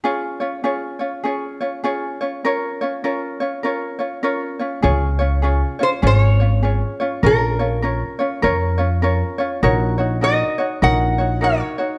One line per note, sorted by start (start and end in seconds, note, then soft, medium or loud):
0.04 0.41 C#4 medium
0.04 0.40 F4 medium
0.04 0.41 G#4 medium
0.04 0.39 C#5 medium
0.40 0.62 C#4 soft
0.40 0.63 F4 soft
0.40 0.64 C#5 soft
0.64 1.00 C#4 medium
0.64 0.99 F4 medium
0.64 1.01 G#4 medium
0.64 0.98 C#5 medium
0.99 1.23 C#4 soft
0.99 1.24 F4 soft
0.99 1.23 C#5 soft
1.24 1.61 C#4 medium
1.24 1.60 F4 medium
1.24 1.60 G#4 medium
1.24 1.59 C#5 medium
1.61 1.83 C#4 soft
1.61 1.83 F4 soft
1.61 1.84 C#5 soft
1.84 2.21 C#4 medium
1.84 2.20 F4 medium
1.84 2.20 G#4 medium
1.84 2.19 C#5 medium
2.21 2.44 C#4 soft
2.21 2.44 F4 soft
2.21 2.44 C#5 soft
2.45 2.81 C#4 medium
2.45 2.81 F4 medium
2.45 2.81 A#4 medium
2.45 2.80 C#5 medium
2.81 3.03 C#4 soft
2.81 3.03 F4 soft
2.81 3.04 C#5 medium
3.04 3.41 C#4 medium
3.04 3.40 F4 medium
3.04 3.40 A#4 medium
3.04 3.39 C#5 medium
3.40 3.63 C#4 soft
3.40 3.64 F4 soft
3.40 3.64 C#5 medium
3.63 3.99 C#4 medium
3.63 3.99 F4 medium
3.63 4.00 A#4 medium
3.63 3.98 C#5 medium
3.99 4.22 C#4 soft
3.99 4.23 F4 soft
3.99 4.23 C#5 soft
4.23 4.60 C#4 medium
4.23 4.59 F4 medium
4.23 4.60 A#4 medium
4.23 4.58 C#5 medium
4.59 4.82 C#4 soft
4.59 4.82 F4 soft
4.59 4.83 C#5 soft
4.82 5.62 C#2 medium
4.82 5.20 C#4 medium
4.82 5.19 F4 medium
4.82 5.20 G#4 medium
4.82 5.18 C#5 medium
5.19 5.42 C#4 soft
5.19 5.43 F4 medium
5.19 5.43 C#5 medium
5.42 5.80 C#4 medium
5.42 5.79 F4 medium
5.42 5.79 G#4 soft
5.42 5.78 C#5 medium
5.79 6.02 C#4 soft
5.79 6.02 F4 soft
5.79 5.89 C5 medium
5.79 6.02 C#5 medium
6.02 6.81 G#1 medium
6.02 6.40 C#4 medium
6.02 6.40 F4 medium
6.02 6.39 G#4 medium
6.02 6.39 C#5 medium
6.07 6.18 C5 medium
6.18 7.29 C#5 medium
6.40 6.62 C#4 soft
6.40 6.63 F4 soft
6.40 6.63 C#5 soft
6.63 7.00 C#4 medium
6.63 7.00 F4 medium
6.63 7.00 G#4 soft
6.63 6.99 C#5 medium
7.00 7.23 C#4 soft
7.00 7.23 F4 medium
7.00 7.23 C#5 soft
7.23 8.01 A#1 medium
7.23 7.60 C#4 medium
7.23 7.59 F4 medium
7.23 7.60 A#4 medium
7.23 9.37 A#4 medium
7.23 7.58 C#5 medium
7.59 7.82 C#4 soft
7.59 7.82 F4 soft
7.59 7.83 C#5 soft
7.82 8.20 C#4 medium
7.82 8.19 F4 soft
7.82 8.19 A#4 soft
7.82 8.18 C#5 medium
8.19 8.42 C#4 soft
8.19 8.42 F4 soft
8.19 8.43 C#5 medium
8.42 9.21 F2 medium
8.42 8.79 C#4 medium
8.42 8.78 F4 medium
8.42 8.79 A#4 medium
8.42 8.77 C#5 medium
8.78 9.02 C#4 soft
8.78 9.02 F4 soft
8.78 9.02 C#5 soft
9.02 9.39 C#4 medium
9.02 9.39 F4 medium
9.02 9.39 A#4 medium
9.02 9.37 C#5 medium
9.38 9.63 C#4 soft
9.38 9.63 F4 soft
9.38 9.62 C#5 medium
9.63 10.41 A#1 medium
9.63 9.99 D#4 medium
9.63 9.98 F#4 medium
9.63 10.00 A#4 medium
9.63 9.97 C#5 loud
9.98 10.21 D#4 soft
9.98 10.21 F#4 soft
9.98 10.22 C#5 medium
10.21 10.59 D#4 medium
10.21 10.58 F#4 medium
10.21 10.59 A#4 soft
10.21 10.57 C#5 medium
10.21 10.85 D#5 medium
10.58 10.82 D#4 soft
10.58 10.82 F#4 soft
10.58 10.82 C#5 soft
10.82 11.60 A#1 medium
10.82 11.19 D#4 medium
10.82 11.18 F#4 medium
10.82 11.19 A#4 medium
10.82 11.17 C#5 medium
10.82 11.45 F#5 medium
11.18 11.41 D#4 soft
11.18 11.41 F#4 soft
11.18 11.42 C#5 soft
11.41 11.79 D#4 medium
11.41 11.78 F#4 soft
11.41 11.78 A#4 medium
11.41 11.77 C#5 medium
11.41 11.98 C#5 medium
11.78 11.98 D#4 soft
11.78 11.98 F#4 soft
11.78 11.98 C#5 soft